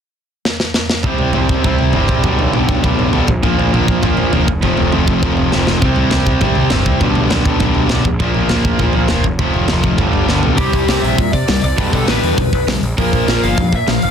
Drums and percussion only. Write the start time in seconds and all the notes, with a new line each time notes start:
0.45 snare
0.60 snare
0.74 snare
0.89 snare
1.03 kick, floor tom
1.18 floor tom
1.33 floor tom
1.49 kick, floor tom
1.64 kick, floor tom
1.78 floor tom
1.93 floor tom
2.08 kick, floor tom
2.24 kick, floor tom
2.39 floor tom
2.53 floor tom
2.69 kick, floor tom
2.84 kick, floor tom
2.99 floor tom
3.13 floor tom
3.27 kick, floor tom
3.43 kick, floor tom
3.59 floor tom
3.74 floor tom
3.88 kick, floor tom
4.03 kick, floor tom
4.17 floor tom
4.33 floor tom
4.48 kick, floor tom
4.62 kick, floor tom
4.77 floor tom
4.92 floor tom
5.07 kick, floor tom
5.23 kick, floor tom
5.37 floor tom
5.52 snare
5.67 snare
5.82 kick, floor tom
5.96 floor tom
6.11 snare, floor tom
6.26 kick, floor tom
6.41 kick, floor tom
6.55 floor tom
6.70 snare, floor tom
6.86 kick, floor tom
7.01 kick, floor tom
7.15 floor tom
7.30 snare, floor tom
7.45 kick, floor tom
7.60 kick, floor tom
7.75 floor tom
7.89 snare, floor tom
8.05 kick, floor tom
8.20 kick, floor tom
8.34 floor tom
8.49 snare, floor tom
8.65 kick, floor tom
8.79 kick, floor tom
8.93 floor tom
9.08 snare, floor tom
9.24 kick, floor tom
9.39 kick, floor tom
9.54 floor tom
9.68 snare, floor tom
9.83 kick, floor tom
9.98 kick, floor tom
10.13 floor tom
10.29 snare
10.43 floor tom
10.57 kick, open hi-hat
10.73 kick, open hi-hat
10.88 snare, open hi-hat
11.04 open hi-hat
11.18 kick, open hi-hat
11.33 kick, open hi-hat
11.48 snare, open hi-hat
11.64 open hi-hat
11.78 kick, open hi-hat
11.93 kick, open hi-hat
12.08 snare, open hi-hat
12.23 open hi-hat
12.38 kick, open hi-hat
12.53 kick, open hi-hat
12.68 snare, open hi-hat
12.83 open hi-hat
12.98 kick, open hi-hat
13.13 kick, open hi-hat
13.28 snare, open hi-hat
13.43 open hi-hat
13.58 kick, open hi-hat
13.72 kick, open hi-hat
13.87 snare, open hi-hat
14.02 open hi-hat